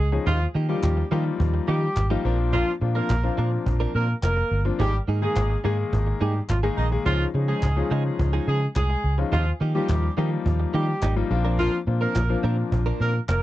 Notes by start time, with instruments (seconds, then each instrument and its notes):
Already playing: horn section G#3 G#4
0.00 fingered electric bass C#2
0.12 grand piano F3 G#3 C#4 D#4 G#4, muted clean electric guitar stroke, cajon slap
0.26 fingered electric bass D#2, clean electric guitar F3 A#3 D#4 G4, horn section F3 F4, cajon bass
0.41 muted clean electric guitar stroke
0.55 fingered electric bass D#3, clean electric guitar F3 A#3 D#4 G4, cajon slap
0.69 grand piano F3 G3 A#3 D#4 F4, clean electric guitar F3 A#3 D#4 G4, horn section G3 G4, cajon slap
0.83 fingered electric bass D#2, cajon bass, cajon slap, clap
0.97 muted clean electric guitar stroke
1.11 fingered electric bass D#3, clean electric guitar F3 A#3 D#4 G4, grand piano F3 G3 A#3 D#4 F4, cajon slap
1.25 muted clean electric guitar stroke, cajon slap
1.40 fingered electric bass D#2, muted clean electric guitar stroke, cajon bass
1.54 muted clean electric guitar stroke
1.68 fingered electric bass D#3, clean electric guitar F3 A#3 D#4 G4, horn section G3 G4, cajon slap
1.82 muted clean electric guitar stroke, cajon slap
1.96 fingered electric bass G#1, muted clean electric guitar stroke, cajon bass, cajon slap, clap
2.10 grand piano F3 G3 A#3 D#4 F4, clean electric guitar F3 A#3 D#4 G4
2.24 fingered electric bass A#1, clean electric guitar F3 C4 D4 A#4, grand piano F3 A#3 C4 D4 F4
2.39 muted clean electric guitar stroke, cajon slap
2.53 clean electric guitar F3 C4 D4 A#4, horn section F3 F4, cajon bass
2.67 muted clean electric guitar stroke
2.81 fingered electric bass A#2, grand piano F3 A#3 C4 D4 F4, muted clean electric guitar stroke, cajon slap
2.95 clean electric guitar F3 C4 D4 A#4, horn section A#3 A#4, cajon slap
3.10 fingered electric bass A#1, cajon bass, cajon slap, clap
3.24 grand piano F3 A#3 C4 D4 F4, muted clean electric guitar stroke
3.37 fingered electric bass A#2, clean electric guitar F3 C4 D4 A#4
3.52 muted clean electric guitar stroke, cajon slap
3.66 fingered electric bass A#1, muted clean electric guitar stroke, cajon bass
3.80 clean electric guitar F3 C4 D4 A#4
3.94 fingered electric bass A#2, clean electric guitar F3 C4 D4 A#4, horn section A#3 A#4, cajon slap
4.08 muted clean electric guitar stroke, cajon slap
4.23 fingered electric bass F1, horn section A#3 A#4, muted clean electric guitar stroke, cajon bass, cajon slap, clap
4.37 muted clean electric guitar stroke
4.51 fingered electric bass G1, cajon slap
4.65 grand piano F3 A#3 C4 D4 F4, muted clean electric guitar stroke, cajon slap
4.79 fingered electric bass G#1, clean electric guitar D#3 A#3 D#4 G#4, horn section G3 G4, cajon bass
4.94 muted clean electric guitar stroke
5.08 fingered electric bass G#2, clean electric guitar D#3 A#3 D#4 G#4, cajon slap
5.22 grand piano D#3 G#3 A#3 D#4 G#4, clean electric guitar D#3 A#3 D#4 G#4, horn section G#3 G#4, cajon slap
5.36 fingered electric bass G#1, cajon bass, cajon slap, clap
5.50 muted clean electric guitar stroke
5.64 fingered electric bass G#2, clean electric guitar D#3 A#3 D#4 G#4, grand piano D#3 G#3 A#3 D#4 G#4
5.78 muted clean electric guitar stroke, cajon slap
5.92 fingered electric bass G#1, muted clean electric guitar stroke, cajon bass
6.07 muted clean electric guitar stroke
6.21 fingered electric bass G#2, clean electric guitar D#3 A#3 D#4 G#4, horn section G3 G4, cajon slap
6.35 muted clean electric guitar stroke, cajon slap
6.49 fingered electric bass G#1, horn section F3 F4, muted clean electric guitar stroke, cajon bass, cajon slap, clap
6.63 grand piano D#3 G#3 A#3 D#4 G#4, clean electric guitar D#3 A#3 D#4 G#4
6.77 fingered electric bass A#1, clean electric guitar D#3 A#3 D#4 G#4, horn section D#4 D#5
6.92 grand piano D#3 G#3 A#3 D#4 G#4, muted clean electric guitar stroke, cajon slap
7.06 fingered electric bass C#2, clean electric guitar F3 G#3 D#4 G#4, grand piano F3 G#3 C#4 D#4 F4, horn section F3 F4, cajon bass
7.20 muted clean electric guitar stroke
7.34 fingered electric bass C#3, grand piano F3 G#3 C#4 D#4 G#4, muted clean electric guitar stroke, cajon slap
7.48 clean electric guitar F3 G#3 D#4 G#4, horn section G#3 G#4, cajon slap
7.63 fingered electric bass C#2, cajon bass, cajon slap, clap
7.77 grand piano F3 G#3 C#4 D#4 F4, muted clean electric guitar stroke
7.91 fingered electric bass C#3, clean electric guitar F3 G#3 D#4 G#4
8.05 muted clean electric guitar stroke, cajon slap
8.19 fingered electric bass C#2, muted clean electric guitar stroke, cajon bass
8.33 clean electric guitar F3 G#3 D#4 G#4
8.47 fingered electric bass C#3, clean electric guitar F3 G#3 D#4 G#4, horn section G#3 G#4
8.62 muted clean electric guitar stroke, cajon slap
8.76 fingered electric bass C2, horn section G#3 G#4, muted clean electric guitar stroke, cajon bass, cajon slap, clap
8.90 muted clean electric guitar stroke
9.04 fingered electric bass C#2, cajon slap
9.18 grand piano F3 G#3 C#4 D#4 F4, muted clean electric guitar stroke, cajon slap
9.32 fingered electric bass D#2, clean electric guitar F3 A#3 D#4 G4, horn section F3 F4, cajon bass
9.46 muted clean electric guitar stroke
9.60 fingered electric bass D#3, clean electric guitar F3 A#3 D#4 G4, cajon slap
9.75 grand piano F3 G3 A#3 D#4 F4, clean electric guitar F3 A#3 D#4 G4, horn section G3 G4, cajon slap
9.89 fingered electric bass D#2, cajon bass, cajon slap, clap
10.03 muted clean electric guitar stroke
10.17 fingered electric bass D#3, clean electric guitar F3 A#3 D#4 G4, grand piano F3 G3 A#3 D#4 F4
10.31 muted clean electric guitar stroke, cajon slap
10.45 fingered electric bass D#2, muted clean electric guitar stroke, cajon bass
10.60 muted clean electric guitar stroke
10.74 fingered electric bass D#3, clean electric guitar F3 A#3 D#4 G4, horn section G3 G4
10.88 muted clean electric guitar stroke, cajon slap
11.02 fingered electric bass G#1, clean electric guitar F3 A#3 D#4 G4, cajon bass, cajon slap, clap
11.16 grand piano F3 G3 A#3 D#4 F4, muted clean electric guitar stroke
11.30 fingered electric bass A#1, grand piano F3 A#3 C4 D4 F4, muted clean electric guitar stroke, cajon slap
11.45 clean electric guitar F3 C4 D4 A#4, cajon slap
11.59 clean electric guitar F3 C4 D4 A#4, horn section F3 F4, cajon bass
11.73 muted clean electric guitar stroke
11.87 fingered electric bass A#2, grand piano F3 A#3 C4 D4 F4, muted clean electric guitar stroke, cajon slap
12.01 clean electric guitar F3 C4 D4 A#4, horn section A#3 A#4, cajon slap
12.16 fingered electric bass A#1, cajon bass, cajon slap, clap
12.29 grand piano F3 A#3 C4 D4 F4, muted clean electric guitar stroke
12.43 fingered electric bass A#2, clean electric guitar F3 C4 D4 A#4, cajon slap
12.58 muted clean electric guitar stroke, cajon slap
12.72 fingered electric bass A#1, muted clean electric guitar stroke, cajon bass
12.86 clean electric guitar F3 C4 D4 A#4
13.00 fingered electric bass A#2, clean electric guitar F3 C4 D4 A#4, horn section A#3 A#4
13.14 muted clean electric guitar stroke, cajon slap
13.28 fingered electric bass F1, horn section A#3 A#4, muted clean electric guitar stroke, cajon bass, cajon slap, clap